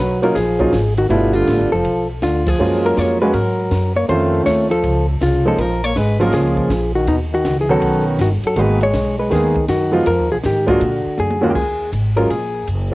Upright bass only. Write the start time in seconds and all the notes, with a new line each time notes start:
0.00 B1
0.36 A#1
0.73 G#1
1.10 G1
1.48 A1
1.60 G1
1.72 F1
1.84 B1
2.23 D2
2.59 F#2
2.97 F2
3.34 G#2
3.71 F#2
4.09 F2
4.46 D#2
4.84 C#2
5.21 C2
5.58 A#1
5.95 G#1
6.32 C#2
6.70 A#1
7.07 D#2
7.45 C#2
7.82 B1
8.18 G1
8.43 muted upright bass stroke
8.56 G#1
8.93 B1
9.31 D#2
9.68 F#2
10.06 F2
10.19 D#2
10.32 B1
10.44 G#2
10.81 A#2
11.06 muted upright bass stroke
11.19 F#2
11.55 D#2
11.92 G#1
12.30 A#1
12.67 F#1